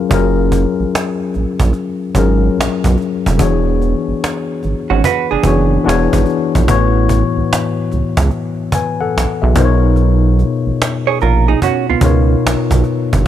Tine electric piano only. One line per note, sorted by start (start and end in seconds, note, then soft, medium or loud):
0.00 0.09 F#3 medium
0.00 0.11 C#4 medium
0.00 0.12 F4 medium
0.00 0.13 G#4 medium
0.00 0.13 A#4 medium
0.00 0.13 F5 medium
0.09 1.51 F#3 medium
0.09 1.51 C#4 medium
0.09 1.52 F4 medium
0.09 1.52 G#4 medium
0.14 1.53 A#4 medium
2.15 3.24 F#3 medium
2.15 3.24 C#4 medium
2.15 3.25 F4 medium
2.15 3.25 G#4 medium
2.15 3.26 A#4 medium
3.38 4.79 E3 medium
3.38 4.80 B3 medium
3.38 4.80 D4 medium
3.38 4.81 F#4 medium
3.38 4.81 G#4 medium
3.38 4.81 C#5 medium
5.43 5.83 E3 medium
5.43 5.84 B3 medium
5.43 5.85 D4 medium
5.43 5.86 F#4 medium
5.43 5.86 G#4 medium
5.43 5.87 C#5 medium
5.84 6.57 E3 medium
5.84 6.58 B3 medium
5.84 6.58 D4 medium
5.84 6.59 F#4 medium
5.84 6.59 G#4 medium
5.88 6.59 C#5 loud
6.67 8.08 A2 medium
6.67 8.09 E3 medium
6.67 8.09 B3 medium
6.67 8.10 F#4 medium
6.67 8.10 C#5 loud
8.75 8.99 B4 medium
8.75 8.99 G#5 medium
9.01 9.40 A4 medium
9.01 9.39 F#5 medium
9.42 9.81 G#4 soft
9.42 9.80 E5 medium
9.55 10.96 B2 medium
9.55 10.96 B3 medium
9.55 10.97 D#4 medium
9.55 10.97 F4 medium
9.55 10.98 A#4 medium
9.55 9.65 C5 medium
9.65 11.01 C#5 medium
12.01 13.10 B2 medium
12.01 13.10 B3 medium
12.01 13.11 D#4 medium
12.01 13.11 F4 medium
12.01 13.12 A#4 medium
12.01 13.12 C#5 medium